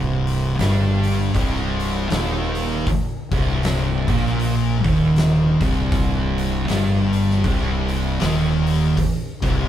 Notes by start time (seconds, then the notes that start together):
Already playing: C1 C2 C3
0.27 open hi-hat
0.59 G1 G2 G3, snare, open hi-hat
1.03 open hi-hat
1.34 C1 C2 C3, kick, open hi-hat
1.80 open hi-hat
2.10 D#1 D#2 D#3, snare, open hi-hat
2.55 open hi-hat
2.87 kick, open hi-hat
3.31 C1 C2 C3, kick, open hi-hat
3.63 snare, open hi-hat
4.08 A#1 A#2 A#3, kick, open hi-hat
4.26 snare
4.40 open hi-hat
4.84 D#1 D#2 D#3, kick, open hi-hat
5.16 snare, open hi-hat
5.61 C1 C2 C3, kick, open hi-hat
5.92 kick, open hi-hat
6.38 open hi-hat
6.68 G1 G2 G3, snare, open hi-hat
7.13 open hi-hat
7.30 snare
7.44 C1 C2 C3, kick, open hi-hat
7.88 open hi-hat
8.20 D#1 D#2 D#3, snare, open hi-hat
8.67 open hi-hat
8.97 kick, open hi-hat
9.42 C1 C2 C3, kick, snare, open hi-hat